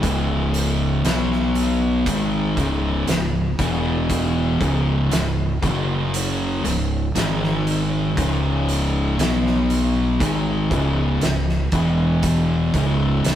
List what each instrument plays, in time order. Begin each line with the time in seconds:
0.03 fingered electric bass C#1, distorted electric guitar C#2 G#2 C#3, kick, closed hi-hat
0.54 closed hi-hat
1.03 fingered electric bass B1, distorted electric guitar B2 F#3 B3, snare, closed hi-hat
1.32 snare
1.55 closed hi-hat
2.06 fingered electric bass G#1, distorted electric guitar G#2 D#3 G#3, kick, closed hi-hat
2.56 fingered electric bass C#1, distorted electric guitar C#2 G#2 C#3, kick, closed hi-hat
3.07 fingered electric bass C#1, distorted electric guitar C#2 G#2, snare, closed hi-hat
3.59 fingered electric bass E1, distorted electric guitar E2 B2 E3, kick, closed hi-hat
4.10 kick, closed hi-hat
4.60 fingered electric bass C#1, distorted electric guitar C#2 G#2 C#3, kick, closed hi-hat
5.11 fingered electric bass C#1, distorted electric guitar C#2 G#2, snare, closed hi-hat
5.62 fingered electric bass F#1, distorted electric guitar F#2 C#3 F#3, kick, closed hi-hat
6.14 closed hi-hat
6.64 fingered electric bass C#1, distorted electric guitar C#2 G#2, closed hi-hat
7.15 fingered electric bass G#1, distorted electric guitar G#2 D#3 G#3, snare, closed hi-hat
7.43 snare
7.67 closed hi-hat
8.17 fingered electric bass C#1, distorted electric guitar C#2 G#2 C#3, kick, closed hi-hat
8.69 closed hi-hat
9.18 fingered electric bass B1, distorted electric guitar B2 F#3 B3, snare, closed hi-hat
9.46 snare
9.70 closed hi-hat
10.20 fingered electric bass G#1, distorted electric guitar G#2 D#3 G#3, kick, closed hi-hat
10.71 fingered electric bass C#1, distorted electric guitar C#2 G#2 C#3, kick, closed hi-hat
11.21 fingered electric bass C#1, distorted electric guitar C#2 G#2, snare, closed hi-hat
11.49 snare
11.72 fingered electric bass E1, distorted electric guitar E2 B2 E3, kick, closed hi-hat
12.23 kick, closed hi-hat
12.74 fingered electric bass C#1, distorted electric guitar C#2 G#2 C#3, kick, closed hi-hat
13.25 fingered electric bass C#1, distorted electric guitar C#2 G#2, snare, closed hi-hat